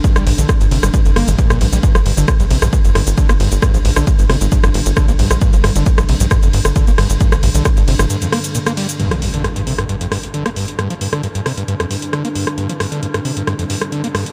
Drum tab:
RD |--x---x---x---x-|--x---x---x---x-|--x---x---x---x-|--x---x---x---x-|
HH |xxoxxxoxxxoxxxox|xxoxxxoxxxoxxxox|xxoxxxoxxxoxxxox|xxoxxxoxxxoxxxox|
SH |xx-xxx-xxx-xxx-x|xx-xxx-xxx-xxx-x|xx-xxx-xxx-xxx-x|xx-xxx-xxx-xxx-x|
SD |-r--r--r--r--r--|-r--r--r--r--r--|r--r--r--r--r--r|--r--r--r--r--r-|
BD |o---o---o---o---|o---o---o---o---|o---o---o---o---|o---o---o---o---|

RD |--x---x---x---x-|----------------|----------------|----------------|
HH |xxoxxxoxxxoxxxox|xxoxxxoxxxoxxxox|xxoxxxoxxxoxxxox|xxoxxxoxxxoxxxox|
SH |xx-xxx-xxx-xxx-x|----------------|----------------|----------------|
SD |-r--r--r--r--r--|-r--r--r--r--r--|r--r--r--r--r--r|--r--r--r--r--r-|
BD |o---o-----------|----------------|----------------|----------------|